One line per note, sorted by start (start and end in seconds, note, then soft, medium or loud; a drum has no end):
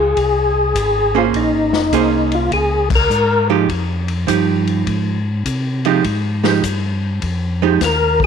0.00 0.15 C#2 medium
0.00 1.19 G#4 medium
0.17 0.74 C2 medium
0.17 kick soft
0.17 ride medium
0.75 1.32 G#1 medium
0.75 kick soft
0.75 hi-hat pedal medium
0.75 ride medium
1.15 1.89 A#3 medium
1.15 1.89 C#4 medium
1.15 1.26 F4 medium
1.15 1.89 G#4 medium
1.15 1.90 C5 medium
1.33 1.53 A#1 medium
1.33 2.36 D#4 medium
1.33 kick soft
1.33 ride medium
1.53 1.73 G#1 medium
1.73 1.91 F1 medium
1.73 snare soft
1.92 2.49 C2 medium
1.92 2.83 A#3 medium
1.92 2.83 C#4 medium
1.92 2.83 G#4 medium
1.92 2.84 C5 medium
1.92 kick soft
1.92 hi-hat pedal soft
1.92 ride medium
2.32 2.52 F4 medium
2.32 ride soft
2.51 3.08 C#2 medium
2.51 2.89 G#4 medium
2.51 kick soft
2.51 ride medium
2.90 kick medium
2.90 crash medium
2.95 3.48 A#4 medium
3.10 3.67 G#2 medium
3.10 hi-hat pedal medium
3.50 3.67 F3 medium
3.50 3.67 G#3 medium
3.50 3.67 D#4 medium
3.50 3.68 G4 medium
3.69 4.26 F2 medium
3.69 kick soft
3.69 ride medium
4.08 ride soft
4.27 4.85 G2 medium
4.27 5.17 F3 medium
4.27 5.18 D#4 medium
4.27 5.18 G4 medium
4.27 kick soft
4.27 hi-hat pedal medium
4.27 ride medium
4.67 ride soft
4.86 5.43 G#2 medium
4.86 kick soft
4.86 ride medium
5.45 6.02 C3 medium
5.45 kick soft
5.45 hi-hat pedal medium
5.45 ride medium
5.85 6.03 F3 medium
5.85 6.03 G#3 medium
5.85 6.03 D#4 medium
5.85 6.03 G4 medium
5.85 ride soft
6.04 6.61 G#2 medium
6.04 kick soft
6.04 ride medium
6.43 6.61 F3 medium
6.43 6.61 G#3 medium
6.43 6.62 D#4 medium
6.43 6.62 G4 medium
6.43 snare medium
6.63 7.20 G2 medium
6.63 kick soft
6.63 hi-hat pedal medium
6.63 ride medium
7.21 7.79 F2 medium
7.21 kick soft
7.21 ride medium
7.62 7.79 F3 medium
7.62 7.79 G#3 medium
7.62 7.80 D#4 medium
7.62 7.80 G4 medium
7.81 8.26 D#2 medium
7.81 8.23 A#4 medium
7.81 kick soft
7.81 snare soft
7.81 hi-hat pedal medium
7.81 ride medium
8.20 kick medium